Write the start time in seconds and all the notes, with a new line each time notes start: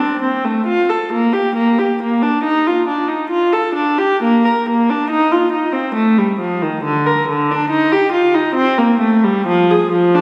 0.00 D4
0.22 C4
0.45 A3
0.66 F4
0.89 A4
1.13 A#3
1.33 G4
1.55 A#3
1.78 G4
2.02 A#3
2.22 D4
2.44 D#4
2.66 F4
2.88 D4
3.08 D#4
3.30 F4
3.52 A4
3.75 D4
3.98 G4
4.23 A#3
4.45 A#4
4.69 A#3
4.90 D4
5.10 D#4
5.31 F4
5.52 D#4
5.72 C4
5.95 A3
6.18 G3
6.39 F3
6.62 D#3
6.84 D3
7.07 A#4
7.29 D3
7.51 D4
7.70 D#4
7.92 G4
8.12 F4
8.34 D#4
8.55 C4
8.78 A#3
9.00 A3
9.24 G3
9.46 F3
9.71 G#4
9.92 F3
10.14 D4